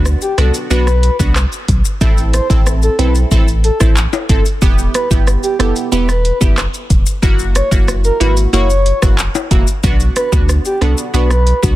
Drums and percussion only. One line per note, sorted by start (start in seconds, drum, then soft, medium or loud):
0.05 cross-stick medium
0.05 shaker medium
0.05 maracas medium
0.21 maracas medium
0.21 shaker medium
0.38 cross-stick medium
0.38 closed hi-hat medium
0.38 shaker medium
0.54 shaker medium
0.54 maracas medium
0.71 shaker medium
0.71 maracas medium
0.87 cross-stick medium
0.87 maracas medium
0.87 shaker medium
1.03 closed hi-hat medium
1.03 shaker soft
1.20 kick loud
1.20 shaker medium
1.20 maracas medium
1.36 cross-stick loud
1.36 clap loud
1.36 shaker medium
1.36 maracas medium
1.52 shaker medium
1.52 maracas medium
1.68 kick loud
1.68 closed hi-hat medium
1.68 shaker medium
1.68 maracas medium
1.85 maracas medium
1.85 shaker medium
2.01 kick loud
2.01 maracas medium
2.01 shaker medium
2.18 maracas soft
2.18 shaker soft
2.33 cross-stick medium
2.33 closed hi-hat medium
2.33 shaker medium
2.33 maracas medium
2.50 kick loud
2.50 maracas medium
2.50 shaker medium
2.66 cross-stick medium
2.66 shaker medium
2.66 maracas medium
2.82 maracas medium
2.82 shaker medium
2.99 closed hi-hat medium
2.99 shaker medium
3.15 maracas medium
3.15 shaker medium
3.31 kick medium
3.31 maracas medium
3.31 shaker medium
3.48 maracas medium
3.48 shaker medium
3.64 closed hi-hat medium
3.64 shaker soft
3.80 kick loud
3.80 cross-stick loud
3.80 maracas medium
3.80 shaker medium
3.97 clap loud
3.97 shaker medium
3.97 maracas medium
4.13 high timbale medium
4.13 shaker medium
4.13 maracas medium
4.29 kick loud
4.29 closed hi-hat medium
4.29 shaker medium
4.29 maracas medium
4.45 maracas medium
4.45 shaker medium
4.62 kick loud
4.62 maracas medium
4.62 shaker medium
4.78 maracas medium
4.78 shaker medium
4.94 cross-stick medium
4.94 closed hi-hat medium
4.94 shaker medium
4.94 maracas medium
5.11 kick loud
5.11 maracas medium
5.11 shaker medium
5.27 cross-stick medium
5.27 shaker medium
5.27 maracas medium
5.43 maracas medium
5.43 shaker medium
5.60 cross-stick medium
5.60 closed hi-hat medium
5.60 shaker medium
5.76 maracas medium
5.76 shaker medium
5.92 maracas medium
5.92 shaker medium
6.09 cross-stick medium
6.09 maracas medium
6.09 shaker medium
6.25 closed hi-hat medium
6.25 shaker soft
6.41 kick loud
6.41 maracas medium
6.41 shaker medium
6.57 cross-stick loud
6.57 clap loud
6.57 shaker medium
6.57 maracas medium
6.74 shaker medium
6.74 maracas medium
6.90 kick medium
6.90 closed hi-hat medium
6.90 shaker medium
6.90 maracas medium
7.06 maracas medium
7.06 shaker medium
7.23 kick loud
7.23 maracas medium
7.23 shaker medium
7.39 maracas soft
7.39 shaker medium
7.55 cross-stick medium
7.55 closed hi-hat medium
7.55 shaker medium
7.55 maracas medium
7.72 kick loud
7.72 maracas medium
7.72 shaker medium
7.88 cross-stick medium
7.88 shaker medium
7.88 maracas medium
8.04 maracas medium
8.04 shaker medium
8.21 closed hi-hat medium
8.21 shaker medium
8.37 shaker medium
8.37 maracas medium
8.53 maracas medium
8.53 shaker medium
8.70 maracas medium
8.70 shaker medium
8.86 closed hi-hat medium
8.86 shaker soft
9.02 kick loud
9.02 cross-stick loud
9.02 maracas medium
9.02 shaker medium
9.18 clap loud
9.18 shaker medium
9.18 maracas medium
9.35 high timbale medium
9.35 shaker medium
9.35 maracas medium
9.51 kick medium
9.51 closed hi-hat medium
9.51 shaker medium
9.51 maracas medium
9.67 maracas medium
9.67 shaker medium
9.83 kick loud
9.83 maracas medium
9.83 shaker medium
10.00 maracas soft
10.00 shaker medium
10.16 cross-stick medium
10.16 closed hi-hat medium
10.16 shaker medium
10.16 maracas medium
10.33 kick loud
10.33 maracas medium
10.33 shaker medium
10.49 cross-stick medium
10.49 shaker medium
10.49 maracas medium
10.65 maracas medium
10.65 shaker medium
10.82 cross-stick medium
10.82 closed hi-hat medium
10.82 shaker medium
10.98 maracas medium
10.98 shaker medium
11.14 maracas medium
11.14 shaker medium
11.30 cross-stick medium
11.30 maracas medium
11.30 shaker medium
11.47 closed hi-hat medium
11.47 shaker soft
11.63 kick loud
11.63 maracas medium
11.63 shaker medium